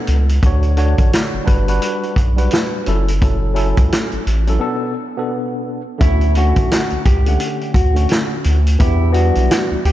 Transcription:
Already playing: B2 B3 D4 A4
0.07 C#2, closed hi-hat
0.29 closed hi-hat
0.43 D2 D3 D4 F#4 C#5, kick, closed hi-hat
0.63 closed hi-hat
0.76 D3 D4 F#4 C#5, closed hi-hat
0.98 A1, kick, closed hi-hat
1.13 snare, closed hi-hat
1.34 G1
1.44 G1 G3 D4 F#4 B4, kick, closed hi-hat
1.67 G3 D4 F#4 B4, closed hi-hat
1.82 closed hi-hat
2.03 closed hi-hat
2.16 B1, kick, closed hi-hat
2.36 G3 D4 F#4 B4, closed hi-hat
2.51 snare, closed hi-hat
2.86 F#1 F#3 C#4 E4 A4, closed hi-hat
3.08 closed hi-hat
3.21 F#3 C#4 E4 A4, kick, closed hi-hat
3.54 F#3 C#4 E4 A4, closed hi-hat
3.77 C#2, kick, closed hi-hat
3.92 snare, closed hi-hat
4.12 A1, closed hi-hat
4.27 A1, closed hi-hat
4.47 F#3 C#4 E4 A4, closed hi-hat
4.59 B2 B3 D4 A4
5.17 B2 B3 D4 A4
5.98 D2 D3 A3 C#4 E4 F#4, kick, closed hi-hat
6.21 closed hi-hat
6.35 D3 A3 C#4 F#4, closed hi-hat
6.56 B1, kick, closed hi-hat
6.71 snare, closed hi-hat
6.90 C#2, closed hi-hat
7.05 C#2 G4, kick, closed hi-hat
7.26 D3 A3 C#4 F#5, closed hi-hat
7.40 closed hi-hat
7.61 closed hi-hat
7.74 D2 F#4, kick, closed hi-hat
7.94 D3 A3 C#4 F#4, closed hi-hat
8.09 snare, closed hi-hat
8.44 D2, closed hi-hat
8.67 closed hi-hat
8.79 E2 E3 B3 D4 E4 G4, kick, closed hi-hat
9.12 E3 G3 B3 D4 F#4, closed hi-hat
9.35 B1, closed hi-hat
9.51 snare, closed hi-hat
9.71 D2
9.85 D2 G4, closed hi-hat

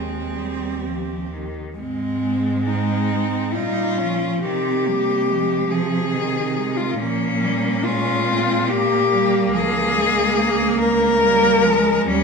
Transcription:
Already playing: D#2 G#3 C4 G#4
0.36 G3
0.84 F3 G4
1.32 D#3
1.78 G#2 G#3 C4
2.66 C4 D#4
3.53 A#2 G3 D#4 F4
3.98 F3 C#4
4.42 C3 D#3 C4 G4
4.86 G3 A#3
5.27 F3 G#3
5.70 F3 G#4
6.14 D#3
6.57 G#3
6.77 F4
6.99 A#2 F3 A#3 C#4
7.43 G3
7.84 G#3 C#4 F4
8.30 C4
8.70 A#3 G4
9.13 G3
9.54 C#2 F3 G#4
9.95 G#3
10.37 A#3
10.78 A#4
11.22 G3 A#3
11.65 F3 G#3
12.07 D#2 G3 C#4

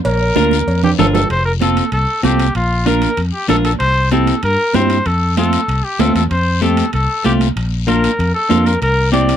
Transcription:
0.05 A#1 A#4, cowbell, high conga, long guiro
0.36 D2 D4 F4 A#4, high conga, short guiro
0.51 high conga, short guiro
0.67 F2, cowbell, long guiro
0.83 G4, low conga, high timbale
0.99 G1 D4 F4 A4 A#4, low conga, low timbale, short guiro
1.14 A4, low conga, low timbale, short guiro
1.30 F1 C5, high conga, high timbale, long guiro
1.45 A#4
1.61 C4 F4 A4, high conga, high timbale, short guiro
1.77 high timbale, short guiro
1.92 C2 A4, high conga, high timbale, long guiro
2.23 C2 C4 F4 G4 A4, high conga, high timbale, short guiro
2.40 high timbale, short guiro
2.55 A#1 F4, high conga, high timbale, long guiro
2.86 D4 F4 A#4, high conga, high timbale, short guiro
3.02 high timbale, short guiro
3.17 F2, high conga, high timbale, long guiro
3.34 G4
3.49 A#1 D4 F4 A4 A#4, high conga, high timbale, low timbale, short guiro
3.65 A4, high timbale, short guiro
3.80 C2 C5, high conga, high timbale, long guiro
4.11 C4 E4 G4 A4, high conga, high timbale, short guiro
4.27 high timbale, short guiro
4.43 G2 A#4, high conga, high timbale, long guiro
4.74 G2 C4 E4 G4 C5, high conga, high timbale, low timbale, short guiro
4.90 high timbale, short guiro
5.06 F2 A4, high conga, high timbale, long guiro
5.37 A3 C4 F4 A4, high conga, high timbale, short guiro
5.53 high timbale, short guiro
5.68 C2, high conga, high timbale, long guiro
5.84 G4
5.99 D2 A3 C4 F4 A4, high conga, high timbale, low timbale, short guiro
6.15 E2 A4, high timbale, short guiro
6.31 F2 C5, high conga, high timbale, long guiro
6.62 A3 C4 G4 A4, high conga, high timbale, short guiro
6.77 high timbale, short guiro
6.93 C2 A4, high conga, high timbale, long guiro
7.24 C2 A3 C4 F4 G4, high conga, high timbale, short guiro
7.41 high timbale, short guiro
7.56 A#1, high conga, high timbale, long guiro
7.87 A#3 D4 F4 A#4, high conga, high timbale, short guiro
8.04 high timbale, short guiro
8.19 F2, high conga, high timbale, long guiro
8.34 A4
8.49 F2 A#3 D4 F4, high conga, high timbale, low timbale, short guiro
8.66 A#4, high timbale, short guiro
8.81 C2 A#4, high conga, high timbale, long guiro
9.12 C4 E4 G4 D5, high conga, high timbale, short guiro
9.29 high timbale, short guiro

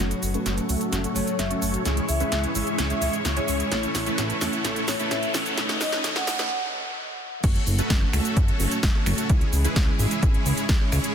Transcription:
0.00 F#1 F#3 A3 C#4 F#4 A4 C#5 F#5 C#6, riser
0.11 closed hi-hat, shaker
0.23 F#1, open hi-hat, shaker
0.34 A3 C#4 F#4 A4 B4, closed hi-hat, shaker
0.46 F#1, snare, closed hi-hat, shaker
0.58 closed hi-hat, shaker
0.69 C#2 A3 C#4 F#4 A4 E5, open hi-hat, shaker
0.81 closed hi-hat, shaker
0.92 F#1, snare, closed hi-hat, shaker
1.04 A3 C#4 F#4 A4 C#5, closed hi-hat, shaker
1.15 F#1 F#3 A3 C#4 F#4 C#5, open hi-hat, shaker
1.27 C#5, closed hi-hat, shaker
1.39 F#1 E5, snare, closed hi-hat, shaker
1.50 A3 C#4 F#4 A4 C#5, closed hi-hat, shaker
1.62 F#1, open hi-hat, shaker
1.74 closed hi-hat, shaker
1.84 C#2 E3 G#3 C#4 E4 G#4 C#5 E5, snare, closed hi-hat, shaker
1.97 closed hi-hat, shaker
2.09 C#2 E5, open hi-hat, shaker
2.20 G#3 C#4 E4 G#4 B4 E5, closed hi-hat, shaker
2.32 C#2, snare, closed hi-hat, shaker
2.44 closed hi-hat, shaker
2.55 G#1 G#3 C#4 E4 G#4 E5, open hi-hat, shaker
2.67 closed hi-hat, shaker
2.78 C#2, snare, closed hi-hat, shaker
2.90 G#3 C#4 E4 G#4 C#5 E5, closed hi-hat, shaker
3.00 C#2 E3 G#3 C#4 E4, open hi-hat, shaker
3.13 closed hi-hat, shaker
3.25 C#2, snare, closed hi-hat, shaker
3.37 G#3 C#4 E4 G#4 C#5, closed hi-hat, shaker
3.48 C#2, open hi-hat, shaker
3.60 closed hi-hat, shaker
3.70 A1 A2 E3 A3 C#4 E4 A4 C#5 E5, snare, closed hi-hat, shaker
3.83 closed hi-hat, shaker
3.95 A1, snare, open hi-hat, shaker
4.06 A3 C#4 E4 A4 B4, closed hi-hat, shaker
4.18 A1, snare, closed hi-hat, shaker
4.30 closed hi-hat, shaker
4.41 E2 A3 C#4 E4 A4 F#5, snare, open hi-hat, shaker
4.53 closed hi-hat, shaker
4.63 A1 A2 E3 A3 C#4 E4 A4 C#5, snare, closed hi-hat, shaker
4.76 closed hi-hat, shaker
4.88 A1 C#5, snare, open hi-hat, shaker
4.99 A3 C#4 E4 A4 B4 C#5, closed hi-hat, shaker
5.11 A1 E5, snare, closed hi-hat, shaker
5.23 closed hi-hat, shaker
5.34 A1 A3 C#4 E4 A4 F#5, snare, open hi-hat, shaker
5.46 closed hi-hat, shaker
5.56 B1 A2 D#3 A3 C#4 D#4 A4 B4 C#5 D#5 F#5 D#6, snare, closed hi-hat, shaker
5.69 snare, closed hi-hat, shaker
5.81 B1 D#5, snare, open hi-hat, shaker
5.92 A3 C#4 D#4 A4 B4, snare, closed hi-hat, shaker
6.03 B1 A2 D#3 A3 C#4 D#4 A4 C#5, snare, closed hi-hat, shaker
6.16 F#5, snare, closed hi-hat, shaker
6.27 F#1, snare, open hi-hat, shaker
6.39 A3 C#4 D#4 A4 B4, snare, closed hi-hat, shaker
7.44 F#1 C#3 F#3 A3 C#4 F#4 A4 C#5, kick, closed hi-hat, crash, shaker
7.55 closed hi-hat
7.67 F#1, open hi-hat, shaker
7.79 A3 C#4 F#4 A4 B4, closed hi-hat, shaker
7.90 F#1, kick, snare, closed hi-hat, shaker
8.13 C#2 A3 C#4 F#4 A4 E5, finger snap, open hi-hat, shaker
8.25 closed hi-hat, shaker
8.37 F#2, kick, closed hi-hat, shaker
8.48 A3 C#4 F#4 A4 C#5, closed hi-hat
8.60 F#1, open hi-hat, shaker
8.71 closed hi-hat, shaker
8.83 F#1, kick, snare, closed hi-hat, shaker
8.95 A3 C#4 F#4 A4 C#5
9.06 F#1, finger snap, open hi-hat, shaker
9.18 closed hi-hat, shaker
9.30 C#2 E3 G#3 E4 G#4, kick, closed hi-hat, shaker
9.41 closed hi-hat
9.53 C#2, open hi-hat, shaker
9.64 G#3 C#4 E4 G#4 B4, closed hi-hat, shaker
9.76 C#2, kick, snare, closed hi-hat, shaker
9.99 G#1 G#3 C#4 E4 G#4 E5, open hi-hat, shaker
10.11 closed hi-hat, shaker
10.23 G#1, kick, closed hi-hat, shaker
10.34 G#3 C#4 E4 G#4 C#5, closed hi-hat
10.46 C#2, open hi-hat, shaker
10.57 closed hi-hat, shaker
10.69 C#2, kick, snare, closed hi-hat, shaker
10.81 G#3 C#4 E4 G#4 C#5
10.92 C#2, finger snap, open hi-hat, shaker
11.04 closed hi-hat, shaker

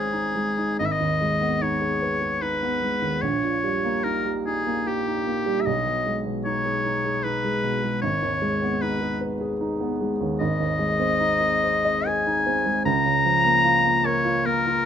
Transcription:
Already playing: G#1 G#3 C4 C#4 D#4 G#4
0.13 D#4
0.35 G#3
0.58 D#4
0.79 G#1 D#5
0.86 E5
0.92 D#5
1.00 D#2
1.21 G#3
1.41 B3
1.62 D#4 C#5
1.81 G#4
2.02 B4
2.21 G#4
2.42 D#4 B4
2.63 B3
2.82 G#3
3.02 D#2
3.21 A#1 C#5
3.43 A#2
3.64 G3
3.84 A#3
4.04 D#4 A#4
4.25 G4
4.46 D#4 G#4
4.67 A#3
4.87 G4
5.07 D#4
5.27 A#3
5.46 G3
5.61 E5
5.66 B1 D#5
5.86 B2
6.06 G#3
6.26 B2
6.45 D#4 C#5
6.65 G#4
6.85 D#4
7.05 G#4
7.23 D#4 B4
7.45 G#3
7.64 B2
7.83 G#3
8.02 G#1 C#5
8.22 D#2
8.42 G#3
8.62 B3
8.81 D#4 B4
9.01 G#4
9.21 B4
9.41 G#4
9.61 D#4
9.81 B3
10.01 G#3
10.21 D#2
10.39 G#1 D#5
10.60 D#2
10.79 G#3
11.00 C4
11.20 D#4
11.41 G#4
11.63 C5
11.85 D#5
12.06 G#4 G#5
12.27 D#4
12.46 C4
12.66 G#3
12.85 C#2 A#5
13.05 C#3
13.25 F3
13.45 A#3
13.65 F4
13.84 A#3
14.05 A#4 C#5
14.25 F4
14.45 A#3 A#4
14.66 F4

